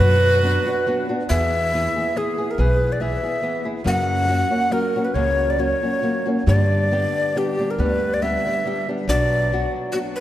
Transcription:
Already playing: nylon-string guitar B2, trumpet F#4, recorder B4
0.00 upright bass F#2, nylon-string guitar F#3 B3 D4 F#4
0.43 nylon-string guitar F#3 B3 D4 F#4
0.66 nylon-string guitar B3 D4 F#4
0.86 nylon-string guitar F#3 B3 D4 F#4
1.09 nylon-string guitar B3 D4 F#4
1.29 upright bass E2, nylon-string guitar E3 B3 E4 G#4, recorder E5
1.74 nylon-string guitar E3 B3 E4 G#4
1.96 nylon-string guitar B3 E4 G#4
2.16 nylon-string guitar E3 B3 E4 G#4, recorder G#4
2.38 nylon-string guitar B3 E4 G#4
2.51 recorder A#4
2.58 upright bass B1, nylon-string guitar E3 B3 E4 G#4, recorder B4
2.92 recorder D5
3.00 nylon-string guitar E3 B3 E4 G#4, recorder E5
3.23 nylon-string guitar B3 E4 G#4
3.42 nylon-string guitar E3 B3 E4 G#4
3.65 nylon-string guitar B3 E4 G#4
3.84 nylon-string guitar F#2 C#3 F#3 A#3 C#4 F#4, upright bass F#2, recorder F#5
4.27 nylon-string guitar F#3 A#3 C#4 F#4
4.50 nylon-string guitar F#3 A#3 C#4 F#4
4.71 nylon-string guitar F#3 A#3 C#4 F#4, recorder A#4
4.96 nylon-string guitar F#3 A#3 C#4 F#4
5.05 recorder B4
5.14 upright bass C#2, nylon-string guitar F#2 C#3 F#3 A#3 C#4 F#4, recorder C#5
5.50 recorder D5
5.58 nylon-string guitar F#3 A#3 C#4 F#4, recorder C#5
5.82 nylon-string guitar F#3 A#3 C#4 F#4
6.02 nylon-string guitar F#3 A#3 C#4 F#4
6.26 nylon-string guitar F#3 A#3 C#4 F#4
6.46 nylon-string guitar G2 D3 G3 B3 D4 G4, upright bass G2, recorder D5
6.91 nylon-string guitar G3 B3 D4 G4
7.35 nylon-string guitar G3 B3 D4 G4, recorder G4
7.59 nylon-string guitar G3 B3 D4 G4
7.71 recorder A#4
7.78 upright bass D2, nylon-string guitar G2 D3 G3 B3 D4 G4, recorder B4
8.14 recorder D5
8.22 nylon-string guitar G3 B3 D4 G4, recorder E5
8.46 nylon-string guitar G3 B3 D4 G4
8.65 nylon-string guitar G3 B3 D4 G4
8.89 nylon-string guitar G3 B3 D4 G4
9.08 upright bass B1, nylon-string guitar B2 F#3 B3 D4 F#4, recorder D5
9.52 nylon-string guitar F#3 B3 D4 F#4
9.92 nylon-string guitar F#3 B3 D4 F#4, recorder F#4
10.16 recorder B4

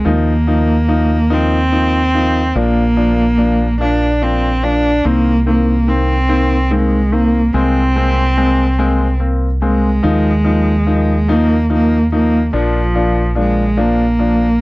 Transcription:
0.05 fingered electric bass D#2, grand piano F3 A#3 D#4, cello A#3
0.47 grand piano F3 A#3 D#4
0.88 grand piano F3 A#3 D#4
1.30 grand piano F3 A#3 D#4, cello C4
1.72 grand piano F3 A#3 D#4
2.14 grand piano F3 A#3 D#4
2.55 fingered electric bass A#1, grand piano F3 A#3 D4, cello A#3
2.97 grand piano F3 A#3 D4
3.38 grand piano F3 A#3 D4
3.81 grand piano F3 A#3 D4, cello D4
4.22 grand piano F3 A#3 D4, cello C4
4.63 grand piano F3 A#3 D4, cello D4
5.04 fingered electric bass C2, grand piano D#3 A#3 C4, cello A#3
5.46 grand piano D#3 A#3 C4, cello A#3
5.87 grand piano D#3 A#3 C4, cello C4
6.29 grand piano D#3 A#3 C4
6.71 grand piano D#3 A#3 C4, cello G#3
7.12 grand piano D#3 A#3 C4, cello A#3
7.54 fingered electric bass C2, grand piano G#3 A#3 C4, cello C4
7.96 grand piano G#3 A#3 C4
8.37 grand piano G#3 A#3 C4
8.79 grand piano G#3 A#3 C4
9.20 grand piano A#3 C4
9.62 grand piano G#3 A#3 C4, cello G#3
10.03 fingered electric bass D#2, grand piano F3 A#3 D#4
10.44 grand piano F3 A#3 D#4
10.86 grand piano F3 A#3 D#4
11.28 grand piano F3 A#3 D#4, cello A#3
11.70 grand piano F3 A#3 D#4, cello A#3
12.12 grand piano F3 A#3 D#4, cello A#3
12.53 fingered electric bass A#1, grand piano F3 A#3 D4, cello F3
12.95 grand piano F3 A#3 D4
13.35 grand piano F3 A#3 D4, cello G#3
13.77 grand piano F3 A#3 D4, cello A#3
14.19 grand piano F3 A#3 D4

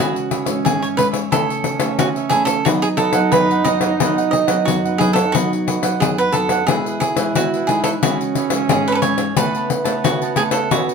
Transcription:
Already playing: nylon-string guitar E3 G#3 C#4
0.00 nylon-string guitar C#3, trombone C#4, cavaquinho E4 F#4 G#4 C#5 E5
0.16 muted cavaquinho stroke, pandeiro
0.31 cavaquinho E4 G#4 C#5 E5, pandeiro
0.45 nylon-string guitar E3 G#3 C#4, cavaquinho G#4 C#5 E5, pandeiro
0.65 nylon-string guitar G#2, cavaquinho G#4, pandeiro
0.81 cavaquinho G#4 C#5 E5, pandeiro
0.97 nylon-string guitar E3 G#3 C#4, cavaquinho E4 G#4 B4 C#5 E5, pandeiro
1.12 cavaquinho G#4 C#5 E5, pandeiro
1.31 nylon-string guitar C#3 E3 A3 C#4, trombone C#4, cavaquinho E4 A4 C#5 E5, pandeiro
1.49 cavaquinho A4 C#5 E5, pandeiro
1.64 muted cavaquinho stroke, pandeiro
1.80 nylon-string guitar E3 A3 C#4, cavaquinho A4 C#5 E5, pandeiro
1.99 nylon-string guitar C#3, cavaquinho F#4, pandeiro
2.16 cavaquinho A4 C#5 E5, pandeiro
2.29 nylon-string guitar E3 A3 C#4, cavaquinho E4 G#4 A4 C#5 E5, pandeiro
2.45 cavaquinho A4 C#5 E5, pandeiro
2.65 nylon-string guitar B2 F#3 B3 D#4, trombone D#4, cavaquinho F#4 B4 D#5 F#5, pandeiro
2.82 cavaquinho G#4, muted cavaquinho stroke, pandeiro
2.97 cavaquinho F#4 A4 B4 D#5 F#5, pandeiro
3.13 nylon-string guitar F#3 B3 D#4, cavaquinho B4 D#5 F#5, pandeiro
3.32 nylon-string guitar F#2, cavaquinho B4, pandeiro
3.51 cavaquinho B4 D#5 F#5, pandeiro
3.64 nylon-string guitar F#3 B3 D#4, cavaquinho F#4 B4 D#5 F#5, pandeiro
3.81 cavaquinho B4 D#5 F#5, pandeiro
4.00 nylon-string guitar B2 F#3 B3 D#4, cavaquinho F#4 B4 D#5 F#5, pandeiro
4.17 cavaquinho B4 D#5 F#5, pandeiro
4.31 cavaquinho D#5, muted cavaquinho stroke, pandeiro
4.47 nylon-string guitar F#3 B3 D#4, cavaquinho B4 D#5 F#5, pandeiro
4.65 nylon-string guitar F#2, cavaquinho F#4, pandeiro
4.85 cavaquinho B4 D#5 F#5, pandeiro
4.98 nylon-string guitar F#3 B3 D#4, cavaquinho F#4 G#4 B4 D#5 F#5, pandeiro
5.13 cavaquinho A4 B4 D#5 F#5, pandeiro
5.32 nylon-string guitar B2 F#3 B3 D#4, cavaquinho F#4 B4 D#5 F#5, pandeiro
5.53 muted cavaquinho stroke, pandeiro
5.67 cavaquinho F#4 B4 D#5 F#5, pandeiro
5.82 nylon-string guitar F#3 B3 D#4, cavaquinho B4 D#5 F#5, pandeiro
6.00 nylon-string guitar F#2, cavaquinho G#4, pandeiro
6.18 cavaquinho B4 D#5 F#5, pandeiro
6.32 nylon-string guitar F#3 B3 D#4, cavaquinho F#4 A4 B4 D#5 F#5, pandeiro
6.49 cavaquinho B4 D#5 F#5, pandeiro
6.67 nylon-string guitar B2 E3 G#3, cavaquinho D#4 G#4 B4, trombone E4, pandeiro
6.71 cavaquinho E5
6.86 cavaquinho G#4 B4 E5, pandeiro
7.00 cavaquinho G#4, pandeiro
7.16 nylon-string guitar E3 G#3, cavaquinho G#4 B4 E5, pandeiro
7.35 nylon-string guitar B2, cavaquinho F#4, pandeiro
7.54 cavaquinho G#4 B4 E5, pandeiro
7.67 nylon-string guitar E3 G#3 D#4, cavaquinho D#4 G#4 B4 E5, pandeiro
7.84 cavaquinho G#4 A4 B4 E5, pandeiro
8.03 nylon-string guitar C#3 E3 G#3 C#4, trombone C#4, cavaquinho E4 F#4 G#4 C#5 E5, pandeiro
8.21 muted cavaquinho stroke, pandeiro
8.35 cavaquinho E4 G#4 C#5 E5, pandeiro
8.50 nylon-string guitar E3 G#3 C#4, cavaquinho G#4 C#5 E5, pandeiro
8.69 nylon-string guitar G#2, cavaquinho G#4, pandeiro
8.88 cavaquinho G#4 B4 C#5 E5, pandeiro
8.92 cavaquinho A4 B4
9.02 nylon-string guitar E3 G#3 C#4, cavaquinho E4 G#4 C#5 E5, pandeiro
9.18 cavaquinho G#4 C#5 E5, pandeiro
9.36 nylon-string guitar C#3 A3 B3 E4, trombone B3, cavaquinho A4 B4 C#5 A5, pandeiro
9.55 cavaquinho B4 C#5 A5, pandeiro
9.70 muted cavaquinho stroke, pandeiro
9.84 nylon-string guitar A3 B3 E4, cavaquinho B4 C#5 A5, pandeiro
10.04 nylon-string guitar C#3, cavaquinho F#4, pandeiro
10.22 cavaquinho B4 C#5 A5, pandeiro
10.36 nylon-string guitar A3 B3 E4, cavaquinho G#4 A4 B4 C#5 A5, pandeiro
10.50 cavaquinho A4 B4 C#5 A5, pandeiro
10.71 nylon-string guitar E3 B3 C#4 G#4, trombone B3, cavaquinho E4 F#4 G#4 C#5 E5, pandeiro
10.89 muted cavaquinho stroke, pandeiro

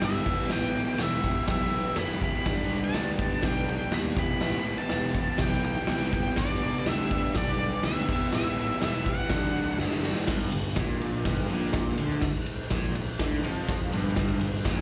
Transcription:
0.02 picked electric bass G1, overdriven electric guitar G3 B3 D4 G4, lead electric guitar E5, snare, crash
0.24 picked electric bass E1, overdriven electric guitar E3 B3 E4 G4, kick, crash
0.50 picked electric bass A1, overdriven electric guitar E3 B3 E4 G4, lead electric guitar G5, snare, crash
0.98 picked electric bass E1, overdriven electric guitar E3 B3 E4 G4, snare, crash
1.03 lead electric guitar E5
1.24 overdriven electric guitar E3 B3 E4 G4, kick
1.48 picked electric bass B1, overdriven electric guitar E3 B3 E4 G4, lead electric guitar E5, kick, snare, crash
1.96 picked electric bass F#1, overdriven electric guitar E3 B3 E4 G4, lead electric guitar B5, snare, crash
2.21 overdriven electric guitar E3 B3 E4 G4, lead electric guitar B5, kick
2.45 picked electric bass G1, overdriven electric guitar G3 B3 D4 G4, kick, snare, crash
2.71 picked electric bass C2
2.84 lead electric guitar A5
2.94 picked electric bass D2, overdriven electric guitar G3 B3 D4 G4, snare, crash
3.19 overdriven electric guitar G3 B3 D4 G4, kick
3.43 picked electric bass B1, overdriven electric guitar G3 B3 D4 G4, lead electric guitar G5, kick, snare, crash
3.69 lead electric guitar G5
3.92 picked electric bass D#2, overdriven electric guitar G3 B3 D4 G4, lead electric guitar B5, snare, crash
4.16 picked electric bass E1, overdriven electric guitar E3 B3 E4 G4, lead electric guitar B5, kick
4.41 picked electric bass A1, overdriven electric guitar E3 B3 E4 G4, snare, crash
4.78 lead electric guitar A5
4.89 picked electric bass E1, overdriven electric guitar E3 B3 E4 G4, snare, crash
5.15 overdriven electric guitar E3 B3 E4 G4, kick
5.38 picked electric bass B1, overdriven electric guitar E3 B3 E4 G4, lead electric guitar G5, kick, snare, crash
5.65 lead electric guitar G5
5.87 picked electric bass C2, overdriven electric guitar E3 B3 E4 G4, lead electric guitar G5, snare, crash
6.12 overdriven electric guitar E3 B3 E4 G4, lead electric guitar G5, kick
6.36 picked electric bass G1, overdriven electric guitar G3 B3 D4 G4, lead electric guitar D5, kick, snare, crash
6.63 picked electric bass C2
6.79 lead electric guitar D5
6.86 picked electric bass D2, overdriven electric guitar G3 B3 D4 G4, lead electric guitar E5, snare, crash
7.11 overdriven electric guitar G3 B3 D4 G4, kick
7.35 picked electric bass B1, overdriven electric guitar G3 B3 D4 G4, lead electric guitar D5, kick, snare, crash
7.83 picked electric bass D2, overdriven electric guitar G3 B3 D4, lead electric guitar E5, snare, crash
7.88 overdriven electric guitar G4
8.08 picked electric bass E1, overdriven electric guitar E3 B3 E4 G4, kick, crash
8.33 picked electric bass A1, overdriven electric guitar E3 B3 E4, lead electric guitar E5, snare, crash
8.38 overdriven electric guitar G4
8.82 picked electric bass E1, overdriven electric guitar E3 B3 E4 G4, lead electric guitar E5, snare, crash
9.06 overdriven electric guitar E3 B3 E4 G4, lead electric guitar F#5, kick
9.30 picked electric bass D2, overdriven electric guitar D3 F#3 A3 D4 F#4, kick, snare, crash
9.78 picked electric bass F#1, overdriven electric guitar D3 F#3 A3 D4 F#4, snare
9.91 snare
10.03 overdriven electric guitar D3 F#3 A3 D4 F#4, snare
10.15 snare
10.27 picked electric bass G1, overdriven electric guitar G2, kick, snare, crash
10.52 picked electric bass G1, overdriven electric guitar G2, ride
10.76 picked electric bass A#1, overdriven electric guitar A#2, kick, snare, ride
11.01 ride
11.25 picked electric bass G1, overdriven electric guitar G2, kick, snare, ride
11.50 picked electric bass A#1, overdriven electric guitar A#2, ride
11.73 kick, snare, ride
11.98 picked electric bass D2, overdriven electric guitar D3, ride
12.21 kick, snare, ride
12.46 ride
12.70 picked electric bass A#1, overdriven electric guitar A#2, kick, snare, ride
12.95 muted overdriven electric guitar stroke, muted picked electric bass stroke, ride
13.19 picked electric bass D2, overdriven electric guitar D3, kick, snare, ride
13.43 picked electric bass F2, overdriven electric guitar F3, ride
13.69 kick, snare, ride
13.92 picked electric bass G1, overdriven electric guitar G2, ride
14.16 picked electric bass G1, overdriven electric guitar G2, kick, snare, ride
14.41 picked electric bass G1, overdriven electric guitar G2, ride
14.65 picked electric bass A#1, overdriven electric guitar A#2, kick, snare, ride

